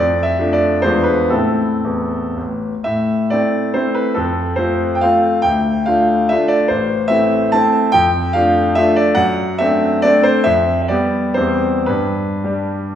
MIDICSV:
0, 0, Header, 1, 2, 480
1, 0, Start_track
1, 0, Tempo, 438917
1, 926, Tempo, 475813
1, 1406, Time_signature, 3, 2, 24, 8
1, 1406, Tempo, 528634
1, 2366, Tempo, 462606
1, 3806, Tempo, 409556
1, 4766, Tempo, 429185
1, 6686, Tempo, 410116
1, 10046, Tempo, 431655
1, 11966, Tempo, 487805
1, 12926, Tempo, 540541
1, 13880, End_track
2, 0, Start_track
2, 0, Title_t, "Grand piano"
2, 0, Program_c, 0, 0
2, 0, Note_on_c, 0, 41, 50
2, 0, Note_on_c, 0, 74, 74
2, 200, Control_c, 0, 64, 127
2, 250, Note_on_c, 0, 76, 68
2, 259, Note_off_c, 0, 74, 0
2, 418, Note_off_c, 0, 41, 0
2, 428, Note_on_c, 0, 57, 37
2, 431, Note_on_c, 0, 62, 40
2, 434, Note_on_c, 0, 65, 39
2, 577, Note_on_c, 0, 74, 73
2, 589, Note_off_c, 0, 76, 0
2, 879, Note_off_c, 0, 57, 0
2, 881, Note_off_c, 0, 62, 0
2, 882, Note_off_c, 0, 65, 0
2, 896, Note_on_c, 0, 72, 78
2, 915, Note_off_c, 0, 74, 0
2, 918, Note_on_c, 0, 56, 36
2, 921, Note_on_c, 0, 40, 55
2, 921, Note_on_c, 0, 62, 39
2, 930, Note_on_c, 0, 65, 36
2, 935, Control_c, 0, 64, 0
2, 1116, Note_on_c, 0, 71, 65
2, 1145, Note_off_c, 0, 72, 0
2, 1146, Control_c, 0, 64, 127
2, 1363, Note_off_c, 0, 56, 0
2, 1364, Note_off_c, 0, 62, 0
2, 1369, Note_off_c, 0, 65, 0
2, 1383, Note_on_c, 0, 69, 56
2, 1385, Note_off_c, 0, 71, 0
2, 1390, Note_off_c, 0, 40, 0
2, 1395, Note_on_c, 0, 60, 32
2, 1399, Note_on_c, 0, 64, 34
2, 1402, Note_on_c, 0, 45, 39
2, 1419, Control_c, 0, 64, 0
2, 1625, Control_c, 0, 64, 127
2, 1741, Note_off_c, 0, 45, 0
2, 1785, Note_off_c, 0, 60, 0
2, 1787, Note_off_c, 0, 64, 0
2, 1879, Note_on_c, 0, 40, 37
2, 2218, Note_off_c, 0, 40, 0
2, 2356, Note_off_c, 0, 69, 0
2, 2357, Note_on_c, 0, 33, 38
2, 2385, Control_c, 0, 64, 0
2, 2711, Note_off_c, 0, 33, 0
2, 2844, Note_on_c, 0, 76, 68
2, 2855, Note_on_c, 0, 45, 45
2, 3081, Control_c, 0, 64, 127
2, 3323, Note_on_c, 0, 74, 67
2, 3328, Note_off_c, 0, 45, 0
2, 3335, Note_on_c, 0, 57, 35
2, 3337, Note_off_c, 0, 76, 0
2, 3347, Note_on_c, 0, 60, 34
2, 3350, Note_on_c, 0, 64, 35
2, 3365, Control_c, 0, 64, 0
2, 3757, Note_off_c, 0, 57, 0
2, 3763, Note_off_c, 0, 60, 0
2, 3765, Note_off_c, 0, 64, 0
2, 3775, Note_on_c, 0, 72, 60
2, 3790, Note_on_c, 0, 60, 38
2, 3791, Note_on_c, 0, 57, 40
2, 3793, Note_off_c, 0, 74, 0
2, 3799, Note_on_c, 0, 64, 41
2, 4013, Note_on_c, 0, 71, 60
2, 4027, Note_off_c, 0, 72, 0
2, 4221, Note_off_c, 0, 57, 0
2, 4221, Note_off_c, 0, 60, 0
2, 4225, Note_off_c, 0, 64, 0
2, 4247, Note_on_c, 0, 69, 58
2, 4261, Note_off_c, 0, 71, 0
2, 4271, Note_on_c, 0, 41, 45
2, 4484, Control_c, 0, 64, 127
2, 4733, Note_on_c, 0, 72, 62
2, 4749, Note_off_c, 0, 41, 0
2, 4752, Note_off_c, 0, 69, 0
2, 4753, Note_on_c, 0, 57, 35
2, 4765, Note_on_c, 0, 60, 36
2, 4766, Note_on_c, 0, 65, 35
2, 5158, Note_off_c, 0, 72, 0
2, 5173, Note_on_c, 0, 79, 50
2, 5200, Note_off_c, 0, 57, 0
2, 5206, Note_off_c, 0, 60, 0
2, 5206, Note_off_c, 0, 65, 0
2, 5242, Note_on_c, 0, 77, 70
2, 5251, Note_off_c, 0, 79, 0
2, 5258, Note_on_c, 0, 57, 43
2, 5264, Control_c, 0, 64, 0
2, 5267, Note_on_c, 0, 60, 39
2, 5268, Note_on_c, 0, 65, 44
2, 5684, Note_off_c, 0, 57, 0
2, 5689, Note_off_c, 0, 60, 0
2, 5689, Note_off_c, 0, 65, 0
2, 5697, Note_on_c, 0, 79, 72
2, 5721, Note_off_c, 0, 77, 0
2, 5722, Note_on_c, 0, 38, 47
2, 5965, Control_c, 0, 64, 127
2, 6186, Note_on_c, 0, 77, 66
2, 6187, Note_off_c, 0, 38, 0
2, 6189, Note_off_c, 0, 79, 0
2, 6204, Note_on_c, 0, 57, 39
2, 6209, Note_on_c, 0, 62, 36
2, 6212, Note_on_c, 0, 65, 40
2, 6643, Note_off_c, 0, 57, 0
2, 6646, Note_off_c, 0, 62, 0
2, 6647, Note_off_c, 0, 65, 0
2, 6670, Note_on_c, 0, 76, 78
2, 6679, Note_off_c, 0, 77, 0
2, 6695, Note_on_c, 0, 57, 45
2, 6699, Control_c, 0, 64, 0
2, 6699, Note_on_c, 0, 62, 43
2, 6705, Note_on_c, 0, 65, 48
2, 6894, Note_on_c, 0, 74, 74
2, 6915, Note_off_c, 0, 76, 0
2, 7106, Note_off_c, 0, 57, 0
2, 7109, Note_off_c, 0, 62, 0
2, 7111, Note_off_c, 0, 65, 0
2, 7128, Note_on_c, 0, 72, 69
2, 7133, Note_off_c, 0, 74, 0
2, 7153, Note_on_c, 0, 33, 47
2, 7341, Control_c, 0, 64, 127
2, 7591, Note_on_c, 0, 76, 82
2, 7606, Note_off_c, 0, 33, 0
2, 7608, Note_off_c, 0, 72, 0
2, 7611, Note_on_c, 0, 57, 43
2, 7617, Note_on_c, 0, 60, 37
2, 7626, Note_on_c, 0, 64, 43
2, 8072, Note_off_c, 0, 57, 0
2, 8075, Note_off_c, 0, 60, 0
2, 8079, Note_off_c, 0, 64, 0
2, 8109, Note_off_c, 0, 76, 0
2, 8109, Note_on_c, 0, 81, 82
2, 8127, Note_on_c, 0, 57, 46
2, 8128, Note_on_c, 0, 60, 49
2, 8137, Control_c, 0, 64, 0
2, 8138, Note_on_c, 0, 64, 48
2, 8543, Note_off_c, 0, 57, 0
2, 8543, Note_off_c, 0, 60, 0
2, 8549, Note_off_c, 0, 64, 0
2, 8576, Note_on_c, 0, 79, 96
2, 8580, Note_off_c, 0, 81, 0
2, 8599, Note_on_c, 0, 41, 54
2, 8794, Control_c, 0, 64, 127
2, 9060, Note_off_c, 0, 41, 0
2, 9060, Note_on_c, 0, 77, 79
2, 9063, Note_off_c, 0, 79, 0
2, 9082, Note_on_c, 0, 62, 43
2, 9083, Note_on_c, 0, 57, 40
2, 9091, Note_on_c, 0, 65, 47
2, 9531, Note_off_c, 0, 57, 0
2, 9531, Note_off_c, 0, 62, 0
2, 9535, Note_off_c, 0, 65, 0
2, 9552, Note_on_c, 0, 76, 89
2, 9567, Note_off_c, 0, 77, 0
2, 9578, Note_on_c, 0, 57, 54
2, 9583, Note_on_c, 0, 62, 51
2, 9585, Control_c, 0, 64, 0
2, 9585, Note_on_c, 0, 65, 55
2, 9798, Note_on_c, 0, 74, 82
2, 9801, Note_off_c, 0, 76, 0
2, 10002, Note_off_c, 0, 57, 0
2, 10004, Note_off_c, 0, 62, 0
2, 10006, Note_off_c, 0, 65, 0
2, 10014, Note_on_c, 0, 78, 88
2, 10031, Note_on_c, 0, 42, 58
2, 10039, Note_off_c, 0, 74, 0
2, 10248, Control_c, 0, 64, 127
2, 10502, Note_on_c, 0, 76, 84
2, 10506, Note_off_c, 0, 42, 0
2, 10512, Note_off_c, 0, 78, 0
2, 10519, Note_on_c, 0, 57, 49
2, 10526, Note_on_c, 0, 60, 46
2, 10531, Note_on_c, 0, 62, 47
2, 10973, Note_off_c, 0, 57, 0
2, 10977, Note_off_c, 0, 60, 0
2, 10979, Note_off_c, 0, 62, 0
2, 10987, Note_on_c, 0, 74, 89
2, 11009, Note_off_c, 0, 76, 0
2, 11013, Note_on_c, 0, 57, 52
2, 11016, Note_on_c, 0, 60, 53
2, 11021, Note_on_c, 0, 62, 54
2, 11034, Control_c, 0, 64, 0
2, 11225, Note_on_c, 0, 72, 86
2, 11239, Note_off_c, 0, 74, 0
2, 11439, Note_off_c, 0, 57, 0
2, 11441, Note_off_c, 0, 60, 0
2, 11443, Note_off_c, 0, 62, 0
2, 11451, Note_on_c, 0, 76, 90
2, 11472, Note_off_c, 0, 72, 0
2, 11472, Note_on_c, 0, 41, 56
2, 11700, Control_c, 0, 64, 127
2, 11857, Note_off_c, 0, 76, 0
2, 11874, Note_on_c, 0, 76, 49
2, 11943, Note_off_c, 0, 41, 0
2, 11946, Note_on_c, 0, 74, 66
2, 11960, Note_off_c, 0, 76, 0
2, 11966, Note_on_c, 0, 55, 43
2, 11966, Note_on_c, 0, 59, 43
2, 11972, Note_on_c, 0, 67, 44
2, 11974, Control_c, 0, 64, 0
2, 12386, Note_off_c, 0, 55, 0
2, 12386, Note_off_c, 0, 59, 0
2, 12389, Note_off_c, 0, 67, 0
2, 12400, Note_on_c, 0, 72, 72
2, 12416, Note_off_c, 0, 74, 0
2, 12424, Note_on_c, 0, 55, 36
2, 12425, Note_on_c, 0, 40, 49
2, 12428, Note_on_c, 0, 60, 36
2, 12430, Note_on_c, 0, 67, 38
2, 12625, Control_c, 0, 64, 127
2, 12886, Note_off_c, 0, 55, 0
2, 12888, Note_off_c, 0, 60, 0
2, 12889, Note_off_c, 0, 67, 0
2, 12911, Note_off_c, 0, 40, 0
2, 12912, Note_on_c, 0, 71, 60
2, 12914, Note_off_c, 0, 72, 0
2, 12934, Note_on_c, 0, 43, 50
2, 12938, Control_c, 0, 64, 0
2, 13136, Control_c, 0, 64, 127
2, 13407, Note_off_c, 0, 43, 0
2, 13425, Note_on_c, 0, 55, 35
2, 13428, Note_on_c, 0, 62, 34
2, 13436, Note_on_c, 0, 67, 38
2, 13854, Note_off_c, 0, 55, 0
2, 13855, Note_off_c, 0, 62, 0
2, 13859, Note_off_c, 0, 67, 0
2, 13880, Note_off_c, 0, 71, 0
2, 13880, End_track
0, 0, End_of_file